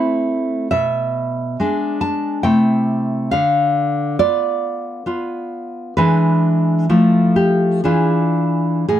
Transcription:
Already playing: A3 C4 E4
0.71 B2 E5
1.60 G#3 D4
2.01 A5
2.43 C3 A3 E4 G5
3.31 D3 F5
4.19 B3 F4 D5
5.06 B3 F4
5.97 E3 G#3 D4 B4
6.90 F3 A3 E4
7.36 G4
7.84 E3 D4 F4 G#4
8.88 A2 G#4

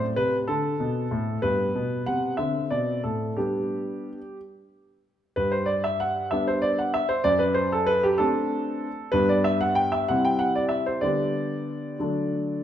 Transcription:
Already playing: A2 C4
0.16 C3 B4
0.48 D3 A4
0.80 B2
1.11 A2
1.42 G2 B3 B4
1.75 B2
2.06 C3 F#5
2.37 D3 C4 E5
2.71 B2 D5
3.04 A2 A4
3.37 G3 B3 D4 G4
5.36 G2 B4
5.52 C5
5.66 D5
5.84 E5
6.00 F#5
6.31 G3 B3 D4 E5
6.48 C5
6.62 D5
6.79 F#5
6.94 E5
7.09 C5
7.24 F#2 D5
7.39 B4
7.54 C5
7.72 A4
7.86 B4
8.03 G4
8.18 A3 C4 D4 A4
9.12 G2 G3 B3 D4 B4
9.29 D5
9.44 E5
9.61 F#5
9.75 G5
9.92 E5
10.08 C3 G3 C4 E4 F#5
10.25 G5
10.39 F#5
10.55 D5
10.69 E5
10.86 C5
11.01 D3 G3 B3 G4 D5
11.99 D3 F#3 A3 D4

